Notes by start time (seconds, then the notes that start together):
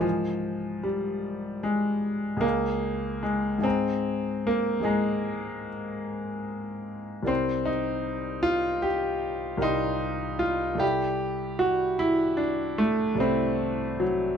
Already playing: G#2 A#4
0.00 F3 C5 D#5 G#5
0.83 G3
1.63 G#3
2.37 C#2 G#4 D#5
2.41 A#3 F5 G#5
3.23 G#3
3.58 G#2 G#4 D#5 G#5
3.63 C4 A#5
4.47 A#3
4.80 G#2 G#4 D#5 G#5
4.85 G#3 A#5
7.23 C2 A#4 D5
7.27 C4 G5 C6
7.65 D#4
8.43 F4
8.82 G4
9.57 C2 A#4 D5 G5
9.62 D#4 C6
10.39 F4
10.75 C2 A4 D5
10.79 G4 E5 B5
11.59 F#4
11.99 E4
12.37 D4
12.78 A3
13.15 C2 A4 D5
13.20 C4 E5 B5
14.00 F#3